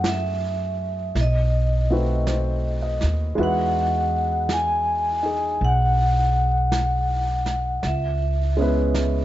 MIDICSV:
0, 0, Header, 1, 5, 480
1, 0, Start_track
1, 0, Tempo, 1115242
1, 1454, Time_signature, 4, 2, 24, 8
1, 3980, End_track
2, 0, Start_track
2, 0, Title_t, "Vibraphone"
2, 0, Program_c, 0, 11
2, 37, Note_on_c, 0, 76, 74
2, 520, Note_off_c, 0, 76, 0
2, 520, Note_on_c, 0, 75, 62
2, 1298, Note_off_c, 0, 75, 0
2, 1476, Note_on_c, 0, 78, 76
2, 1928, Note_off_c, 0, 78, 0
2, 1948, Note_on_c, 0, 80, 83
2, 2430, Note_on_c, 0, 78, 79
2, 2434, Note_off_c, 0, 80, 0
2, 3386, Note_on_c, 0, 76, 66
2, 3408, Note_off_c, 0, 78, 0
2, 3980, Note_off_c, 0, 76, 0
2, 3980, End_track
3, 0, Start_track
3, 0, Title_t, "Grand piano"
3, 0, Program_c, 1, 0
3, 0, Control_c, 1, 64, 127
3, 0, Note_on_c, 1, 57, 46
3, 0, Note_on_c, 1, 61, 42
3, 0, Note_on_c, 1, 64, 43
3, 0, Note_on_c, 1, 66, 43
3, 0, Note_on_c, 1, 68, 53
3, 498, Note_off_c, 1, 57, 0
3, 498, Note_off_c, 1, 61, 0
3, 498, Note_off_c, 1, 64, 0
3, 499, Note_off_c, 1, 66, 0
3, 500, Note_off_c, 1, 68, 0
3, 500, Control_c, 1, 64, 0
3, 565, Control_c, 1, 64, 127
3, 819, Note_on_c, 1, 57, 41
3, 819, Note_on_c, 1, 60, 41
3, 824, Note_on_c, 1, 63, 38
3, 825, Note_on_c, 1, 66, 39
3, 828, Note_on_c, 1, 71, 46
3, 977, Note_on_c, 1, 72, 38
3, 1216, Note_on_c, 1, 75, 40
3, 1362, Note_off_c, 1, 72, 0
3, 1443, Note_off_c, 1, 63, 0
3, 1443, Note_on_c, 1, 56, 55
3, 1449, Note_on_c, 1, 63, 45
3, 1452, Note_off_c, 1, 57, 0
3, 1452, Note_off_c, 1, 60, 0
3, 1454, Note_on_c, 1, 64, 48
3, 1455, Note_off_c, 1, 66, 0
3, 1457, Note_off_c, 1, 71, 0
3, 1460, Control_c, 1, 64, 0
3, 1461, Note_on_c, 1, 66, 49
3, 1466, Note_on_c, 1, 71, 54
3, 1531, Control_c, 1, 64, 127
3, 1557, Note_off_c, 1, 75, 0
3, 2243, Note_off_c, 1, 63, 0
3, 2249, Note_on_c, 1, 63, 36
3, 2263, Note_on_c, 1, 68, 44
3, 3366, Note_off_c, 1, 56, 0
3, 3369, Note_off_c, 1, 63, 0
3, 3371, Note_off_c, 1, 64, 0
3, 3375, Note_off_c, 1, 66, 0
3, 3376, Note_off_c, 1, 68, 0
3, 3377, Note_off_c, 1, 71, 0
3, 3377, Control_c, 1, 64, 0
3, 3451, Control_c, 1, 64, 127
3, 3688, Note_on_c, 1, 56, 51
3, 3694, Note_on_c, 1, 61, 44
3, 3699, Note_on_c, 1, 59, 45
3, 3706, Note_on_c, 1, 64, 46
3, 3712, Note_on_c, 1, 71, 56
3, 3980, Note_off_c, 1, 56, 0
3, 3980, Note_off_c, 1, 59, 0
3, 3980, Note_off_c, 1, 61, 0
3, 3980, Note_off_c, 1, 64, 0
3, 3980, Note_off_c, 1, 71, 0
3, 3980, End_track
4, 0, Start_track
4, 0, Title_t, "Upright bass"
4, 0, Program_c, 2, 32
4, 0, Note_on_c, 2, 42, 76
4, 479, Note_off_c, 2, 42, 0
4, 496, Note_on_c, 2, 35, 72
4, 1286, Note_off_c, 2, 35, 0
4, 1304, Note_on_c, 2, 39, 59
4, 1444, Note_off_c, 2, 39, 0
4, 1455, Note_on_c, 2, 40, 77
4, 2396, Note_off_c, 2, 40, 0
4, 2414, Note_on_c, 2, 35, 69
4, 3355, Note_off_c, 2, 35, 0
4, 3374, Note_on_c, 2, 37, 67
4, 3980, Note_off_c, 2, 37, 0
4, 3980, End_track
5, 0, Start_track
5, 0, Title_t, "Drums"
5, 17, Note_on_c, 9, 25, 30
5, 17, Note_on_c, 9, 38, 41
5, 17, Note_on_c, 9, 44, 44
5, 60, Note_off_c, 9, 38, 0
5, 60, Note_off_c, 9, 44, 0
5, 497, Note_off_c, 9, 25, 0
5, 497, Note_on_c, 9, 25, 33
5, 497, Note_on_c, 9, 38, 24
5, 540, Note_off_c, 9, 38, 0
5, 976, Note_off_c, 9, 25, 0
5, 976, Note_on_c, 9, 25, 26
5, 976, Note_on_c, 9, 38, 34
5, 976, Note_on_c, 9, 44, 45
5, 1019, Note_off_c, 9, 38, 0
5, 1019, Note_off_c, 9, 44, 0
5, 1295, Note_on_c, 9, 38, 21
5, 1338, Note_off_c, 9, 38, 0
5, 1454, Note_off_c, 9, 25, 0
5, 1454, Note_on_c, 9, 25, 41
5, 1933, Note_off_c, 9, 25, 0
5, 1933, Note_on_c, 9, 25, 33
5, 1933, Note_on_c, 9, 38, 39
5, 1933, Note_on_c, 9, 44, 47
5, 1976, Note_off_c, 9, 38, 0
5, 1976, Note_off_c, 9, 44, 0
5, 2414, Note_off_c, 9, 25, 0
5, 2414, Note_on_c, 9, 25, 32
5, 2891, Note_off_c, 9, 25, 0
5, 2891, Note_on_c, 9, 25, 30
5, 2891, Note_on_c, 9, 38, 37
5, 2891, Note_on_c, 9, 44, 47
5, 2934, Note_off_c, 9, 38, 0
5, 2934, Note_off_c, 9, 44, 0
5, 3210, Note_on_c, 9, 38, 25
5, 3253, Note_off_c, 9, 38, 0
5, 3369, Note_off_c, 9, 25, 0
5, 3369, Note_on_c, 9, 25, 34
5, 3369, Note_on_c, 9, 38, 27
5, 3413, Note_off_c, 9, 38, 0
5, 3850, Note_off_c, 9, 25, 0
5, 3850, Note_on_c, 9, 25, 32
5, 3850, Note_on_c, 9, 38, 36
5, 3850, Note_on_c, 9, 44, 44
5, 3893, Note_off_c, 9, 38, 0
5, 3893, Note_off_c, 9, 44, 0
5, 3980, Note_off_c, 9, 25, 0
5, 3980, End_track
0, 0, End_of_file